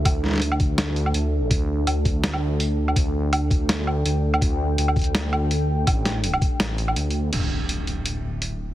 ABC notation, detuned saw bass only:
X:1
M:4/4
L:1/8
Q:"Swing 16ths" 1/4=165
K:Cmix
V:1 name="Detuned saw bass" clef=bass
D,,6 D,,2 | D,,2 D,,6 | D,,6 D,,2 | D,,2 D,,6 |
A,,,3 z A,,,2 D,,2 | D,,,8 |]